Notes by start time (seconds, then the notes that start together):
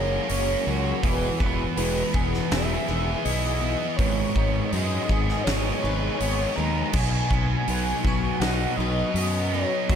Already playing: F#1 F#3 G#3 A#3 C#4 F#4 G#4 A#4 C#5
0.28 F#1 A#3 C#4 C#5, open hi-hat
0.65 C#2 F#3 A#3 F#4 C#5
1.02 E1 E2 E3 B4, kick, open hi-hat
1.40 E1 B3, kick
1.77 E1 G#3 B3 E4, open hi-hat
2.13 E1 E3 B3 G#4, kick
2.34 snare
2.49 E1 B3 E4 E5, snare, open hi-hat
2.87 E1 B3 G#4
3.23 B1 B3 E4 D#5, open hi-hat
3.61 E3 B3 E4
3.96 G#1 G#2 B3 C#5, kick, open hi-hat
4.35 G#1 B3 D#4, kick
4.72 F#2 G#3 B3 D#4 D#5, open hi-hat
5.08 G#1 G#3 B3 G#4, kick
5.29 snare
5.44 G#1 B3 D#4 C#5, snare, open hi-hat
5.83 G#1 B3 G#4 B4
6.18 G#1 B3 C#5, open hi-hat
6.22 D#4
6.56 D#2 G#3 B3 D#4 A#5
6.93 B1 B2 F#3 G#5, kick, crash
7.31 B1 B3, kick
7.67 B1 F#3 B3 D#4, open hi-hat
8.04 B1 F#3 B3 F#4, kick
8.40 B1 B3 D#4 F#5, snare, open hi-hat
8.76 B1 B3 F#4 B4 D#5
9.14 F#2 B3 D#4, open hi-hat
9.50 F#3 D#4 C#5
9.54 B3
9.89 F#1 F#3, kick, open hi-hat